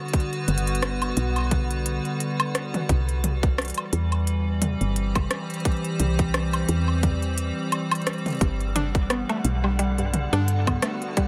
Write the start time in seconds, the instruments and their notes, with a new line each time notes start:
Already playing: ambient pad D3 G3 B3 F#4 B4
0.08 closed hi-hat
0.13 kick, closed hi-hat
0.20 closed hi-hat
0.33 closed hi-hat
0.48 fm bass G1, closed hi-hat, high tom
0.58 closed hi-hat
0.67 closed hi-hat
0.75 closed hi-hat
0.82 cross-stick, closed hi-hat, high woodblock
1.02 closed hi-hat, high woodblock
1.17 fm bass B1, closed hi-hat
1.36 closed hi-hat, high woodblock
1.38 high woodblock
1.40 high woodblock
1.45 high woodblock
1.47 high woodblock
1.51 kick, closed hi-hat, high tom
1.71 closed hi-hat
1.86 closed hi-hat
2.05 closed hi-hat
2.20 closed hi-hat
2.40 closed hi-hat, high woodblock
2.55 cross-stick, closed hi-hat
2.74 closed hi-hat, high tom
2.89 fm bass C2, ambient pad E3, kick, closed hi-hat
3.09 closed hi-hat
3.24 closed hi-hat, high tom
3.43 kick, closed hi-hat
3.58 cross-stick, closed hi-hat
3.62 closed hi-hat
3.65 closed hi-hat
3.68 closed hi-hat
3.70 closed hi-hat
3.74 closed hi-hat
3.78 closed hi-hat, high woodblock
3.93 fm bass E2, ambient pad C4, closed hi-hat
4.12 closed hi-hat, high woodblock
4.25 ambient pad G4, closed hi-hat
4.62 ambient pad C5, closed hi-hat, high tom
4.81 fm bass G1, closed hi-hat
4.96 closed hi-hat
5.15 kick, closed hi-hat, high tom, high woodblock
5.31 cross-stick, closed hi-hat
5.50 closed hi-hat
5.54 closed hi-hat
5.60 closed hi-hat
5.65 kick, closed hi-hat
5.72 closed hi-hat
5.77 closed hi-hat
5.84 closed hi-hat
6.00 fm bass C2, closed hi-hat, high tom
6.19 kick, closed hi-hat
6.34 cross-stick, closed hi-hat, high woodblock
6.53 closed hi-hat, high woodblock
6.69 fm bass E2, closed hi-hat
6.88 high woodblock
7.03 kick, closed hi-hat, high tom
7.22 closed hi-hat
7.38 closed hi-hat
7.72 closed hi-hat, high woodblock
7.91 closed hi-hat, high woodblock
7.95 closed hi-hat
8.02 closed hi-hat
8.07 cross-stick, closed hi-hat
8.13 closed hi-hat
8.18 closed hi-hat
8.26 closed hi-hat, high tom
8.28 closed hi-hat
8.30 closed hi-hat
8.32 closed hi-hat
8.35 closed hi-hat
8.37 closed hi-hat
8.39 fm bass G1, synth arpeggio sound G2, ambient pad D3, synth texture F#5, kick, closed hi-hat
8.41 closed hi-hat
8.61 closed hi-hat
8.76 synth arpeggio sound D4, closed hi-hat, high tom
8.95 kick, closed hi-hat
9.10 synth arpeggio sound B3, cross-stick, closed hi-hat
9.15 ambient pad B3
9.29 synth arpeggio sound A3, closed hi-hat, high woodblock
9.45 fm bass B1, closed hi-hat
9.64 synth arpeggio sound G3, high woodblock
9.79 synth arpeggio sound G3, ambient pad F#4, closed hi-hat
9.98 synth arpeggio sound G2, closed hi-hat
10.14 closed hi-hat, high tom
10.33 fm bass G2, synth arpeggio sound D4, ambient pad B4, closed hi-hat
10.48 closed hi-hat
10.67 synth arpeggio sound B3, kick, closed hi-hat, high tom, high woodblock
10.82 synth arpeggio sound A3, cross-stick, closed hi-hat
11.02 closed hi-hat
11.17 synth arpeggio sound G3, kick, closed hi-hat